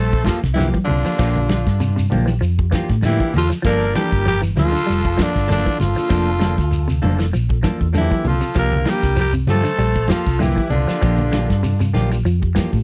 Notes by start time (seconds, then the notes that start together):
Already playing: A#1 G3 A3 A4 C5
0.13 muted clean electric guitar stroke, kick, closed hi-hat
0.24 F3 A#3 F4 G4 A4, kick, snare, closed hi-hat, high conga, shekere
0.43 C2, muted clean electric guitar stroke, kick, snare, closed hi-hat, shekere
0.54 D3 E3 F3 A#3 E4 F4 G4, closed hi-hat, high conga
0.58 G4, shekere
0.74 E3, kick, closed hi-hat, high conga
0.84 D3 D4 F4, muted clean electric guitar stroke, closed hi-hat, low conga
0.90 C2, shekere
1.03 F3 A#3 D4 F4 G4, muted clean electric guitar stroke, closed hi-hat, shekere
1.07 muted fingered electric bass stroke
1.18 A#1 F3 A#3 F4 G4, kick, snare, closed hi-hat, high conga, shekere
1.36 closed hi-hat, low conga
1.49 D3 F3 F4, muted clean electric guitar stroke, snare, closed hi-hat, high conga
1.66 G2, muted clean electric guitar stroke, kick, snare, closed hi-hat, shekere
1.80 C3, muted clean electric guitar stroke, closed hi-hat, high conga, shekere
1.96 C3, muted clean electric guitar stroke, closed hi-hat, shekere
2.10 A#1 F3 A#3 D4 F4 G4, open hi-hat, high conga, low conga, shekere
2.26 E3, closed hi-hat, shekere
2.30 muted clean electric guitar stroke
2.41 F2 F3, closed hi-hat, high conga, shekere
2.58 F4 G4, muted clean electric guitar stroke, kick, closed hi-hat
2.70 E3 F3 A#3 D4 F4 G4, kick, snare, closed hi-hat, high conga, shekere
2.75 F4 G4
2.90 A2, muted clean electric guitar stroke, kick, snare, closed hi-hat, shekere
3.02 D3 F3 A#3 E4 F4 G4, snare, closed hi-hat, high conga, shekere
3.07 E3
3.19 E3 A#3 D4 F4 G4, kick
3.34 E2 F3 F4 A4, muted clean electric guitar stroke, open hi-hat, low conga, shekere
3.50 F3, muted clean electric guitar stroke, snare, closed hi-hat, shekere
3.62 G1 F3 A#3 D4 F4 A4 A#4, kick, closed hi-hat, high conga, shekere
3.66 A#4 D5
3.94 E3 F3 G3 A#3 D4 G4 A4, snare, closed hi-hat, high conga
4.00 A#4
4.12 G1, muted clean electric guitar stroke, kick, closed hi-hat, shekere
4.26 F3 G3 G4, muted clean electric guitar stroke, closed hi-hat, high conga, shekere
4.30 A#4
4.42 E3, muted clean electric guitar stroke, closed hi-hat, shekere
4.56 D2 F3 A#3 F4, muted clean electric guitar stroke, snare, open hi-hat, high conga, low conga, shekere
4.62 A4
4.72 D3, muted clean electric guitar stroke, closed hi-hat
4.77 shekere
4.87 F1 G3, closed hi-hat, high conga, shekere
5.03 muted clean electric guitar stroke, kick, closed hi-hat
5.17 D3 F3 A#3 D4 A4, kick, snare, closed hi-hat, high conga, shekere
5.22 D4 F4
5.34 G1, muted clean electric guitar stroke, kick, snare, closed hi-hat, shekere
5.47 D3 F3 A#3 D4 A4, closed hi-hat, high conga, shekere
5.52 D4 F4
5.66 E3, kick, closed hi-hat
5.78 G1 F3 F4, muted clean electric guitar stroke, snare, closed hi-hat, low conga, shekere
5.86 A4
5.96 A#3 D4 F4 A4, muted clean electric guitar stroke, muted fingered electric bass stroke, closed hi-hat, shekere
6.09 F1 F3 A#3 D4 A4, kick, closed hi-hat, high conga, shekere
6.28 closed hi-hat
6.39 D3 F3 A#3 D4 A4, snare, closed hi-hat, high conga
6.58 D2, muted clean electric guitar stroke, kick, snare, closed hi-hat, shekere
6.71 muted clean electric guitar stroke, closed hi-hat, high conga, shekere
6.88 C3, muted clean electric guitar stroke, closed hi-hat, shekere
7.02 F1 F3 A#3 D4 F4 A4, open hi-hat, high conga, low conga, shekere
7.19 E3, muted clean electric guitar stroke, snare, closed hi-hat, shekere
7.33 A#1 F3, closed hi-hat, high conga, shekere
7.49 F4 A4, muted clean electric guitar stroke, kick, closed hi-hat
7.62 E3 F3 A#3 D4 F4 A4, kick, snare, closed hi-hat, high conga, shekere
7.80 E2, muted clean electric guitar stroke, kick, closed hi-hat, shekere
7.93 D3 F3 A#3 D4 A4, closed hi-hat, high conga, shekere
7.97 E3 E4 G4
8.11 E3 A#3 D4 F4 A4, kick, high conga
8.24 C2 F4, muted clean electric guitar stroke, open hi-hat, low conga, shekere
8.28 F3 A4
8.40 C3, muted clean electric guitar stroke, closed hi-hat, shekere
8.54 C2 F3 A#3 D4 F4 G4, kick, closed hi-hat, shekere
8.58 A#3 A#4 F5
8.72 low conga
8.85 E3 F3 G3 A#3 F4 G4 A#4, snare, closed hi-hat, high conga
8.89 G4
9.03 C2, muted clean electric guitar stroke, kick, snare, closed hi-hat, shekere
9.16 F3 G3 A#4, muted clean electric guitar stroke, closed hi-hat, high conga, shekere
9.21 G4
9.33 C3, muted clean electric guitar stroke, closed hi-hat, shekere
9.47 G2 F3 A3 F4 G4 A4 C5, muted clean electric guitar stroke, snare, open hi-hat, high conga, low conga, shekere
9.63 D3, muted fingered electric bass stroke, muted clean electric guitar stroke, closed hi-hat, shekere
9.78 A#1 G3, closed hi-hat, high conga, shekere
9.95 muted clean electric guitar stroke, kick, closed hi-hat
10.08 F3 A#3 F4 G4, kick, snare, closed hi-hat, high conga, shekere
10.12 A4
10.27 C2, muted clean electric guitar stroke, kick, snare, closed hi-hat, shekere
10.39 D3 E3 F3 A#3 E4 F4 G4, closed hi-hat, high conga, shekere
10.56 E3, kick, closed hi-hat
10.70 C2 D3 D4 F4, muted clean electric guitar stroke, closed hi-hat, low conga, shekere
10.87 F3 A#3 D4 F4 G4, muted clean electric guitar stroke, muted fingered electric bass stroke, snare, closed hi-hat, shekere
11.01 A#1 F3 A#3 G4, muted clean electric guitar stroke, kick, closed hi-hat, high conga, shekere
11.18 closed hi-hat, low conga
11.32 D3 F3 A#3 F4 G4, snare, closed hi-hat, high conga
11.50 G2, muted clean electric guitar stroke, kick, snare, closed hi-hat, shekere
11.63 C3, muted clean electric guitar stroke, closed hi-hat, high conga, shekere
11.79 C3, muted clean electric guitar stroke, closed hi-hat, shekere
11.93 A#1 F3 A#3 D4 F4 G4, snare, open hi-hat, high conga, low conga, shekere
12.11 muted clean electric guitar stroke, closed hi-hat, shekere
12.25 F2 F3, closed hi-hat, high conga, shekere
12.40 F4 G4, muted clean electric guitar stroke, kick, closed hi-hat
12.55 E3 F3 A#3 D4 F4 G4, kick, snare, closed hi-hat, high conga, shekere
12.72 A2, muted clean electric guitar stroke, kick, closed hi-hat, shekere